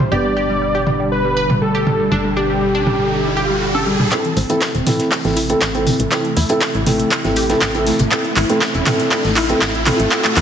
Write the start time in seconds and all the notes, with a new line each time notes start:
Already playing: G3 D4 G4
0.12 G1 B2 D3 B3 D4 G4 D5, riser
0.25 G3
0.37 G4
0.50 G3
0.62 G3
0.75 G4
0.87 G3, mid tom
1.00 G3
1.12 B4
1.25 G3
1.37 B4
1.50 G3, mid tom
1.62 G3 A4
1.75 G4
1.87 G3, mid tom
2.00 G3
2.12 G1 D4 A4
2.25 G3
2.37 D4 G4
2.50 G3
2.62 G3
2.75 D4
2.87 G3, mid tom, high conga
3.00 G3
3.25 G3
3.37 G4
3.50 G3
3.62 G3
3.75 A4, high conga
3.87 G3
4.00 G3, mid tom
4.12 C3 E3 A3 C4 E4 A4, kick, clap, closed hi-hat, tambourine, riser
4.25 E3, closed hi-hat
4.37 A1 C4, open hi-hat, tambourine
4.50 E3 C4 E4 A4, closed hi-hat
4.62 kick, snare, clap, closed hi-hat, tambourine
4.75 E1 C4, closed hi-hat
4.86 E3 C4 E4 A4, snare, open hi-hat, mid tom, tambourine
5.00 E3, snare, closed hi-hat
5.11 kick, clap, closed hi-hat, open hi-hat
5.25 A1 E3 C4 E4 A4, snare, closed hi-hat
5.37 E4, open hi-hat, tambourine
5.50 E3 C4 E4 A4, closed hi-hat
5.61 A1 E3, kick, snare, clap, closed hi-hat, tambourine
5.75 C4 E4 A4, closed hi-hat
5.87 E3, open hi-hat, mid tom, tambourine
6.00 A1 E3, closed hi-hat
6.12 C4 E4 A4, kick, clap, closed hi-hat, tambourine
6.25 A3, closed hi-hat
6.37 E2 E4, open hi-hat, tambourine
6.49 A3 C4 E4 A4, closed hi-hat
6.60 A3, kick, snare, clap, closed hi-hat, tambourine
6.75 A1 E4, closed hi-hat
6.87 A3 C4 E4 A4, snare, open hi-hat, mid tom, tambourine
7.00 A3, closed hi-hat
7.11 kick, clap, closed hi-hat, tambourine
7.24 A1 A3 C4 E4 A4, snare, closed hi-hat
7.36 G4, open hi-hat, tambourine
7.49 A3 C4 E4 A4, snare, closed hi-hat
7.61 A1 A3, kick, snare, clap, closed hi-hat, tambourine
7.75 C4 E4 A4, closed hi-hat
7.87 A3, snare, open hi-hat, tambourine
7.99 A1 A3, closed hi-hat, mid tom
8.12 C4 E4 A4, kick, clap, closed hi-hat, tambourine
8.25 A3, closed hi-hat
8.37 A1 E4, clap, open hi-hat, tambourine
8.50 A3 C4 E4 A4, closed hi-hat
8.61 A3, kick, snare, clap, closed hi-hat, tambourine
8.75 E1 E4, closed hi-hat
8.87 A3 C4 E4 A4, snare, clap, open hi-hat, mid tom, tambourine
8.99 A3, snare, closed hi-hat
9.11 C4 E4, kick, clap, closed hi-hat, open hi-hat
9.24 A1 A3, snare, closed hi-hat
9.36 E4, clap, open hi-hat, tambourine
9.49 A3 C4 E4 A4, closed hi-hat
9.61 A1 A3, kick, snare, clap, closed hi-hat, tambourine
9.75 E4, closed hi-hat
9.86 A3 C4 E4 A4, clap, open hi-hat, mid tom, tambourine
10.00 A1 A3, closed hi-hat
10.12 C4 E4 A4, kick, clap, closed hi-hat, tambourine
10.25 A3, clap, closed hi-hat
10.37 E2 E4, clap, open hi-hat, tambourine